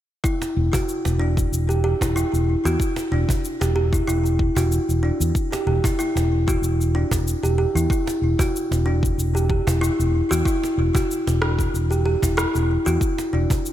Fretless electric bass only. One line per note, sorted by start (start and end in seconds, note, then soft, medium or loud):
0.56 0.68 E1 medium
1.05 1.45 E1 medium
1.52 1.92 E1 medium
2.01 2.22 E1 medium
2.33 2.54 E1 medium
2.65 2.75 E2 medium
3.11 3.23 E1 medium
3.61 4.00 E1 medium
4.08 4.48 E1 medium
4.56 4.77 E1 medium
4.89 5.09 E1 medium
5.20 5.30 E2 medium
5.66 5.78 E1 medium
6.15 6.55 E1 medium
6.62 7.03 E1 medium
7.11 7.33 E1 medium
7.43 7.64 E1 medium
7.75 7.85 E2 medium
8.21 8.34 E1 medium
8.71 9.10 E1 medium
9.18 9.58 E1 medium
9.67 9.88 E1 medium
9.99 10.20 E1 medium
10.31 10.41 E2 medium
10.77 10.89 E1 medium
11.27 11.66 E1 medium
11.74 12.14 E1 medium
12.23 12.44 E1 medium
12.55 12.76 E1 medium
12.86 12.96 E2 medium
13.33 13.45 E1 medium